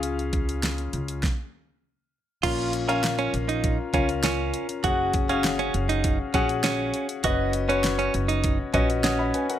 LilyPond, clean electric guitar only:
\new Staff \with { instrumentName = "Clean electric guitar" } { \time 4/4 \key ais \phrygian \tempo 4 = 100 r1 | eis'8 r16 cis'16 r16 cis'16 r16 dis'8 r16 cis'16 r16 cis'8. r16 | fis'8 r16 cis'16 r16 cis'16 r16 dis'8 r16 cis'16 r16 cis'8. r16 | fis'8 r16 cis'16 r16 cis'16 r16 dis'8 r16 cis'16 r16 cis'8. r16 | }